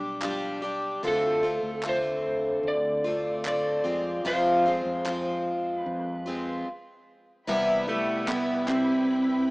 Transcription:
Already playing: B1 G3 D4 G4
0.22 F3 G3 D4 G4, clap
0.62 G3 D4 G4
1.03 D2 D3 A3 C4 F4
1.08 A4
1.43 A3 C4 F4
1.63 D2
1.83 D3 A3 C4 F4, clap
1.89 C5
2.63 D2
2.68 D5
3.04 A3 C4 F4
3.44 D3 A3 C4 F4, clap
3.48 D5
3.84 F2 F3 G#3 C4 F4
4.24 F2 C3 F3 G#3 C4 F4 C5
4.66 F3 G#3 C4 F4
4.85 F2
5.05 F3 G#3 C4 F4, clap
5.77 B4
5.86 F2
6.26 F3 G#3 C4 F4
7.47 C2 C3 E3 G3 B3 E4 B4 G5 B5
7.88 G3 A3 B3 E4
8.27 E3 G3 B3 E4, clap
8.67 G3 C4 E4, clap

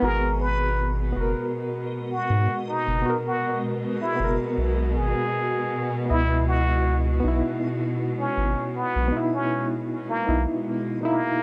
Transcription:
Already playing: G#3
0.00 G#1 B2 B3 F#4 A#4
0.08 G#4
0.41 B4
1.12 B3
1.17 F#1 F#4
1.21 A#4
2.12 F#4
2.30 G#2
2.68 D#4
2.88 F#1
3.02 B3
3.06 F#4 A#4
3.27 F#4
4.02 E4
4.16 B3
4.20 F#1 F#4
4.24 A#4
4.58 B1
4.96 G#1 G#4
6.06 B3 E4
6.10 C#2 D#5
6.14 E4
6.48 F#4
7.20 B3 D#4
7.24 B1 E4
8.20 C#4
8.37 G#1
8.76 B3
8.96 B1
9.09 B3
9.13 D#4
9.17 E4
9.34 C#4
10.10 A#3
10.25 B1 B3 D#4 E4
11.01 B2 A#3 D#4
11.05 E4

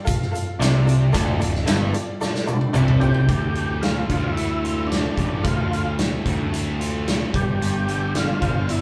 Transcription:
0.04 F4 A4 F5, kick, shaker
0.08 closed hi-hat
0.22 snare
0.31 F4 A4 F5, shaker
0.35 closed hi-hat
0.58 C2 C3 F4 A4 D5, shaker
0.62 snare, closed hi-hat
0.85 F4 A4 D5, closed hi-hat, shaker
1.12 D1 D2 F4 A4 D5, kick, closed hi-hat, shaker
1.38 D1 D2 F4 A4 D5, closed hi-hat, shaker
1.55 snare
1.65 G1 F4 A4 E5, snare, closed hi-hat, shaker
1.69 G2
1.91 F4 A4 D5, closed hi-hat, shaker
2.20 F4 A4 D5, snare, shaker
2.35 snare
2.45 F4 A4 D5, high tom, shaker
2.61 high tom
2.73 C2 C3 F4 A4 D5, mid tom, shaker
2.88 mid tom
2.99 F4 G4 A4 D5, floor tom, shaker
3.14 floor tom
3.29 D2, kick, closed hi-hat
3.55 A2, closed hi-hat
3.82 A2 F4, snare, closed hi-hat
4.10 D2 D3, kick, closed hi-hat
4.32 E4
4.37 A3, closed hi-hat
4.64 F4, closed hi-hat
4.87 D4
4.92 A3, snare, closed hi-hat
5.17 A1 A2, kick, closed hi-hat
5.44 D2 F4, kick, closed hi-hat
5.71 A2, closed hi-hat
5.98 A2, snare, closed hi-hat
6.26 D2 D3, kick, closed hi-hat
6.53 A3, closed hi-hat
6.80 F4, closed hi-hat
7.07 A3, snare, closed hi-hat
7.34 G1 G2 G4, kick, closed hi-hat
7.58 G1 G2, closed hi-hat
7.87 D3, closed hi-hat
8.14 D3 F4, snare, closed hi-hat
8.41 G1 G3, kick, closed hi-hat
8.68 D4 E4, closed hi-hat

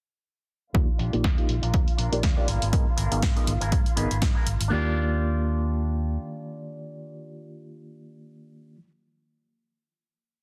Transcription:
0.74 D#2 A#3 D#4 F4 G4 D5 F5, kick, closed hi-hat
0.98 A#1 D4 F4 G4, closed hi-hat, tambourine
1.13 A#1 A#3 D#4 F4 G4 D5, closed hi-hat
1.24 D#2, kick, snare, closed hi-hat
1.38 A#3 D#4 F4 G4 D#5, closed hi-hat
1.49 A#1, closed hi-hat, tambourine
1.62 A#1 D4 F4 A#4, closed hi-hat
1.74 D#2, kick, closed hi-hat
1.88 closed hi-hat
1.97 A#1 D4 F4 A#4, closed hi-hat, tambourine
2.12 A#1 A#3 D#4 F4 G4 D5, closed hi-hat
2.23 D#2, kick, snare, closed hi-hat
2.36 A#3 D4 D#4 F4 G4 D5
2.47 G#1 B3 G#4 A#4, closed hi-hat
2.62 G#1, closed hi-hat
2.73 G#2 B3 D#4 G#4 A#4 D#5, kick, closed hi-hat
2.97 G#1 B3 G#4 A#4, closed hi-hat, tambourine
3.11 G#1 B3 D#4 G#4 A#4 F5, closed hi-hat
3.22 G#2, kick, snare, closed hi-hat
3.36 B3 D#4 G#4 A#4 D#5, closed hi-hat
3.47 G#1, closed hi-hat
3.60 G#1 B3 G#4 A#4, closed hi-hat
3.72 G#2, kick, closed hi-hat
3.86 closed hi-hat
3.96 G#1 B3 D#4 G#4 A#4 B4 D#5, closed hi-hat
4.11 G#1, closed hi-hat
4.22 G#2, kick, snare, closed hi-hat
4.35 B3 G#4 A#4
4.46 G#1, closed hi-hat, tambourine
4.60 G#1, muted clean electric guitar stroke, closed hi-hat, tambourine
4.68 D#2 D#3 A#3 D4 F4 G4
4.73 G4 D5

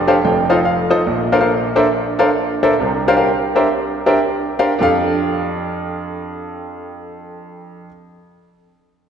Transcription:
Already playing: F1 F2
0.07 D4 G4 A4 C5 F5 A5
0.24 F1 F2 G5
0.49 D#4 F4 A4 C5 F5
0.65 F5
0.90 D#4 F4 A4 C5 D#5
1.06 A#1 A#2
1.32 D4 A4 A#4 C5 F5
1.40 D4 A4 A#4 C5 F5
1.76 D4 A4 A#4 C5 E5
2.19 D4 A4 A#4 C5 F5
2.63 D4 A4 A#4 C5 E5
2.80 C2 C3
3.08 D4 G4 A#4 C5 F5
3.16 D4 G4 A#4 C5 F5
3.55 D4 G4 A#4 C5 E5
4.06 D4 G4 A#4 C5 E5
4.59 D4 G4 A#4 C5 F5
4.79 F2 D4 G4 A4 F5

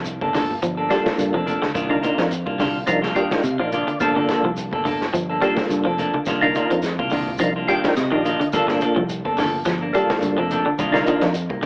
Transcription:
Already playing: C2 F3
0.05 closed hi-hat, shekere
0.21 G1 A#3 D4 A4, kick, high conga
0.34 D3 F3 A#3 A4, muted clean electric guitar stroke, snare, open hi-hat, high conga, low conga, shekere
0.50 low conga
0.62 G1 F3, closed hi-hat, shekere
0.78 A#3 D4 A4
0.89 F3 G3 A#3 D4 F4 A4, muted clean electric guitar stroke, kick, snare, closed hi-hat, shekere
1.06 kick, snare, closed hi-hat, high conga
1.18 G2, closed hi-hat, high conga, shekere
1.34 F1 F3 A#3 D4 A4
1.46 F3 A#3 D4 A4, closed hi-hat, high conga, shekere
1.62 D3, snare, high conga
1.75 C2 D#3 A#3 D4 F4, kick, closed hi-hat, low conga, shekere
1.89 D3 A#3 D4 D#4 F4 A#4
2.02 A#3 D4 F4, muted clean electric guitar stroke, closed hi-hat, high conga, shekere
2.18 F2 F3, snare, closed hi-hat
2.31 closed hi-hat, shekere
2.46 C2 A#3 D4 F4, kick
2.59 D3 D#3 D4 F4, kick, snare, open hi-hat, high conga, low conga, shekere
2.86 C2 F3 D4 D#4 F4 A#4, closed hi-hat, shekere
3.02 A#3 D4 F4, snare, high conga
3.15 D#3 G3 A#3 D4 F4 A#4 G5, kick, closed hi-hat, shekere
3.30 D4 D#4 F4 A#4, kick, snare, closed hi-hat, high conga
3.44 C3 F5, closed hi-hat, high conga, shekere
3.59 A#1 F3 A#3 D4 D#4 F4 A#4
3.72 D#3 A#3 D4 F4 D5, closed hi-hat, high conga, shekere
3.88 D3, closed hi-hat
4.00 G1 F3 A#3 D4 F4 A4, kick, closed hi-hat, low conga, shekere
4.16 D3 A#3 D4 A4
4.29 F3 A#3 D4 A4, snare, closed hi-hat, high conga, shekere
4.43 C2 F3
4.57 closed hi-hat, shekere
4.71 G1 A#3 D4 A4, kick, high conga
4.85 D3 A#3 D4 A4, muted clean electric guitar stroke, open hi-hat, high conga, low conga, shekere
5.01 snare
5.14 G1 F3, closed hi-hat, shekere
5.30 A#3 D4 A4
5.42 F3 G3 A#3 D4 F4 A4, kick, closed hi-hat, shekere
5.57 kick, snare, closed hi-hat, high conga
5.69 G2, closed hi-hat, high conga, shekere
5.85 F1 F3 A#3 D4 A4
5.98 F3 A#3 D4 A4, closed hi-hat, high conga, shekere
6.14 D3, high conga
6.26 C2 D#3 A#3 D4 F4, kick, snare, closed hi-hat, low conga, shekere
6.41 D3 A#3 D4 D#4 F4 A#4
6.55 D#3 A#3 D4 F4, closed hi-hat, high conga, shekere
6.71 F2 F3, closed hi-hat
6.82 snare, closed hi-hat, shekere
6.99 C2 A#3 D4 F4, kick, high conga
7.10 D3 D#3 A#3 D4 F4, open hi-hat, high conga, low conga, shekere
7.28 low conga
7.38 C2 F3 D4 D#4 F4 A#4, closed hi-hat, shekere
7.56 A#3 D4 F4
7.68 D#3 G3 A#3 D4 F4 G4 G5, kick, closed hi-hat, shekere
7.83 D4 D#4 F4 A#4, kick, snare, closed hi-hat, high conga
7.96 C3 D#5, snare, closed hi-hat, high conga, shekere
8.11 A#1 D#3 A#3 D4 D#4 F4 G4
8.25 D#3 A#3 D4 F4, closed hi-hat, shekere
8.40 D3, muted fingered electric bass stroke, closed hi-hat
8.53 G1 F3 A#3 D4 F4 A4, kick, closed hi-hat, low conga, shekere
8.68 A#3 D4 A4, muted clean electric guitar stroke, snare
8.81 F3 A#3 D4 A4, closed hi-hat, high conga, shekere
8.96 C2 F3
9.09 closed hi-hat, shekere
9.25 G1 A#3 D4 A4, kick
9.37 D3 F3 A#3 A4, muted clean electric guitar stroke, snare, open hi-hat, high conga, low conga, shekere
9.65 G1 F3, snare, closed hi-hat, shekere
9.81 A#3 D4, muted clean electric guitar stroke
9.93 F3 G3 A#3 D4 F4 A4, muted clean electric guitar stroke, kick, closed hi-hat, shekere
10.10 kick, snare, closed hi-hat, high conga
10.21 G2, closed hi-hat, high conga, shekere
10.38 F1 F3 A#3 D4 A4
10.50 F3 A#3 D4 A4, closed hi-hat, high conga, shekere
10.66 D3, muted fingered electric bass stroke
10.78 C2 D#3 A#3 D4 F4, kick, closed hi-hat, low conga, shekere
10.92 D3 A#3 D4 D#4 F4 A#4, snare
11.06 D#3 A#3 D4 F4, closed hi-hat, high conga, shekere
11.21 F2 F3, snare, closed hi-hat
11.34 closed hi-hat, shekere
11.50 C2 A#3, muted clean electric guitar stroke, kick
11.62 D#3, open hi-hat, shekere

